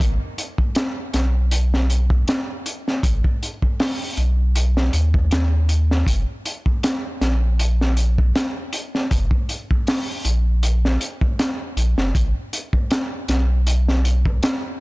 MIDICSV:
0, 0, Header, 1, 3, 480
1, 0, Start_track
1, 0, Time_signature, 4, 2, 24, 8
1, 0, Key_signature, 5, "minor"
1, 0, Tempo, 759494
1, 9354, End_track
2, 0, Start_track
2, 0, Title_t, "Sub bass"
2, 0, Program_c, 0, 38
2, 0, Note_on_c, 0, 32, 95
2, 114, Note_off_c, 0, 32, 0
2, 719, Note_on_c, 0, 35, 88
2, 1418, Note_off_c, 0, 35, 0
2, 1917, Note_on_c, 0, 32, 96
2, 2033, Note_off_c, 0, 32, 0
2, 2638, Note_on_c, 0, 35, 88
2, 3097, Note_off_c, 0, 35, 0
2, 3119, Note_on_c, 0, 39, 88
2, 3818, Note_off_c, 0, 39, 0
2, 3834, Note_on_c, 0, 30, 93
2, 3951, Note_off_c, 0, 30, 0
2, 4557, Note_on_c, 0, 34, 90
2, 5257, Note_off_c, 0, 34, 0
2, 5760, Note_on_c, 0, 30, 95
2, 5874, Note_off_c, 0, 30, 0
2, 6478, Note_on_c, 0, 34, 89
2, 6937, Note_off_c, 0, 34, 0
2, 7436, Note_on_c, 0, 34, 95
2, 7552, Note_off_c, 0, 34, 0
2, 7566, Note_on_c, 0, 30, 85
2, 7664, Note_off_c, 0, 30, 0
2, 7679, Note_on_c, 0, 32, 97
2, 7794, Note_off_c, 0, 32, 0
2, 8396, Note_on_c, 0, 35, 89
2, 9096, Note_off_c, 0, 35, 0
2, 9354, End_track
3, 0, Start_track
3, 0, Title_t, "Drums"
3, 1, Note_on_c, 9, 36, 104
3, 4, Note_on_c, 9, 42, 78
3, 64, Note_off_c, 9, 36, 0
3, 67, Note_off_c, 9, 42, 0
3, 242, Note_on_c, 9, 42, 59
3, 305, Note_off_c, 9, 42, 0
3, 369, Note_on_c, 9, 36, 76
3, 432, Note_off_c, 9, 36, 0
3, 474, Note_on_c, 9, 42, 66
3, 482, Note_on_c, 9, 38, 110
3, 537, Note_off_c, 9, 42, 0
3, 546, Note_off_c, 9, 38, 0
3, 718, Note_on_c, 9, 42, 67
3, 722, Note_on_c, 9, 38, 50
3, 781, Note_off_c, 9, 42, 0
3, 785, Note_off_c, 9, 38, 0
3, 957, Note_on_c, 9, 42, 90
3, 1020, Note_off_c, 9, 42, 0
3, 1098, Note_on_c, 9, 38, 45
3, 1161, Note_off_c, 9, 38, 0
3, 1199, Note_on_c, 9, 42, 58
3, 1262, Note_off_c, 9, 42, 0
3, 1328, Note_on_c, 9, 36, 97
3, 1392, Note_off_c, 9, 36, 0
3, 1438, Note_on_c, 9, 42, 80
3, 1446, Note_on_c, 9, 38, 105
3, 1501, Note_off_c, 9, 42, 0
3, 1509, Note_off_c, 9, 38, 0
3, 1680, Note_on_c, 9, 42, 60
3, 1744, Note_off_c, 9, 42, 0
3, 1819, Note_on_c, 9, 38, 34
3, 1882, Note_off_c, 9, 38, 0
3, 1917, Note_on_c, 9, 36, 106
3, 1918, Note_on_c, 9, 42, 90
3, 1980, Note_off_c, 9, 36, 0
3, 1981, Note_off_c, 9, 42, 0
3, 2050, Note_on_c, 9, 36, 85
3, 2113, Note_off_c, 9, 36, 0
3, 2166, Note_on_c, 9, 42, 63
3, 2229, Note_off_c, 9, 42, 0
3, 2290, Note_on_c, 9, 36, 78
3, 2354, Note_off_c, 9, 36, 0
3, 2400, Note_on_c, 9, 46, 70
3, 2402, Note_on_c, 9, 38, 112
3, 2463, Note_off_c, 9, 46, 0
3, 2466, Note_off_c, 9, 38, 0
3, 2637, Note_on_c, 9, 42, 57
3, 2700, Note_off_c, 9, 42, 0
3, 2879, Note_on_c, 9, 42, 73
3, 2942, Note_off_c, 9, 42, 0
3, 3014, Note_on_c, 9, 38, 49
3, 3077, Note_off_c, 9, 38, 0
3, 3116, Note_on_c, 9, 42, 57
3, 3179, Note_off_c, 9, 42, 0
3, 3249, Note_on_c, 9, 36, 98
3, 3312, Note_off_c, 9, 36, 0
3, 3357, Note_on_c, 9, 42, 78
3, 3366, Note_on_c, 9, 38, 99
3, 3420, Note_off_c, 9, 42, 0
3, 3429, Note_off_c, 9, 38, 0
3, 3595, Note_on_c, 9, 42, 66
3, 3658, Note_off_c, 9, 42, 0
3, 3737, Note_on_c, 9, 38, 48
3, 3800, Note_off_c, 9, 38, 0
3, 3833, Note_on_c, 9, 36, 96
3, 3840, Note_on_c, 9, 42, 91
3, 3896, Note_off_c, 9, 36, 0
3, 3903, Note_off_c, 9, 42, 0
3, 4080, Note_on_c, 9, 42, 60
3, 4143, Note_off_c, 9, 42, 0
3, 4208, Note_on_c, 9, 36, 83
3, 4272, Note_off_c, 9, 36, 0
3, 4319, Note_on_c, 9, 42, 87
3, 4324, Note_on_c, 9, 38, 103
3, 4382, Note_off_c, 9, 42, 0
3, 4387, Note_off_c, 9, 38, 0
3, 4560, Note_on_c, 9, 38, 55
3, 4560, Note_on_c, 9, 42, 58
3, 4623, Note_off_c, 9, 38, 0
3, 4623, Note_off_c, 9, 42, 0
3, 4800, Note_on_c, 9, 42, 82
3, 4863, Note_off_c, 9, 42, 0
3, 4938, Note_on_c, 9, 38, 39
3, 5001, Note_off_c, 9, 38, 0
3, 5035, Note_on_c, 9, 42, 66
3, 5098, Note_off_c, 9, 42, 0
3, 5172, Note_on_c, 9, 36, 102
3, 5236, Note_off_c, 9, 36, 0
3, 5280, Note_on_c, 9, 42, 82
3, 5281, Note_on_c, 9, 38, 102
3, 5344, Note_off_c, 9, 38, 0
3, 5344, Note_off_c, 9, 42, 0
3, 5515, Note_on_c, 9, 42, 71
3, 5578, Note_off_c, 9, 42, 0
3, 5655, Note_on_c, 9, 38, 37
3, 5718, Note_off_c, 9, 38, 0
3, 5757, Note_on_c, 9, 42, 80
3, 5759, Note_on_c, 9, 36, 100
3, 5821, Note_off_c, 9, 42, 0
3, 5822, Note_off_c, 9, 36, 0
3, 5883, Note_on_c, 9, 36, 100
3, 5947, Note_off_c, 9, 36, 0
3, 5998, Note_on_c, 9, 42, 56
3, 6061, Note_off_c, 9, 42, 0
3, 6135, Note_on_c, 9, 36, 87
3, 6198, Note_off_c, 9, 36, 0
3, 6238, Note_on_c, 9, 46, 67
3, 6246, Note_on_c, 9, 38, 103
3, 6301, Note_off_c, 9, 46, 0
3, 6309, Note_off_c, 9, 38, 0
3, 6476, Note_on_c, 9, 42, 66
3, 6539, Note_off_c, 9, 42, 0
3, 6717, Note_on_c, 9, 42, 76
3, 6781, Note_off_c, 9, 42, 0
3, 6858, Note_on_c, 9, 38, 43
3, 6921, Note_off_c, 9, 38, 0
3, 6957, Note_on_c, 9, 42, 64
3, 7020, Note_off_c, 9, 42, 0
3, 7087, Note_on_c, 9, 36, 92
3, 7150, Note_off_c, 9, 36, 0
3, 7200, Note_on_c, 9, 42, 85
3, 7202, Note_on_c, 9, 38, 102
3, 7264, Note_off_c, 9, 42, 0
3, 7265, Note_off_c, 9, 38, 0
3, 7439, Note_on_c, 9, 42, 63
3, 7502, Note_off_c, 9, 42, 0
3, 7570, Note_on_c, 9, 38, 47
3, 7633, Note_off_c, 9, 38, 0
3, 7678, Note_on_c, 9, 36, 94
3, 7679, Note_on_c, 9, 42, 82
3, 7741, Note_off_c, 9, 36, 0
3, 7742, Note_off_c, 9, 42, 0
3, 7920, Note_on_c, 9, 42, 66
3, 7983, Note_off_c, 9, 42, 0
3, 8046, Note_on_c, 9, 36, 80
3, 8109, Note_off_c, 9, 36, 0
3, 8156, Note_on_c, 9, 42, 74
3, 8163, Note_on_c, 9, 38, 110
3, 8220, Note_off_c, 9, 42, 0
3, 8226, Note_off_c, 9, 38, 0
3, 8396, Note_on_c, 9, 42, 59
3, 8402, Note_on_c, 9, 38, 52
3, 8459, Note_off_c, 9, 42, 0
3, 8465, Note_off_c, 9, 38, 0
3, 8637, Note_on_c, 9, 42, 87
3, 8700, Note_off_c, 9, 42, 0
3, 8775, Note_on_c, 9, 38, 42
3, 8838, Note_off_c, 9, 38, 0
3, 8879, Note_on_c, 9, 42, 57
3, 8942, Note_off_c, 9, 42, 0
3, 9009, Note_on_c, 9, 36, 80
3, 9072, Note_off_c, 9, 36, 0
3, 9117, Note_on_c, 9, 42, 80
3, 9123, Note_on_c, 9, 38, 114
3, 9180, Note_off_c, 9, 42, 0
3, 9186, Note_off_c, 9, 38, 0
3, 9354, End_track
0, 0, End_of_file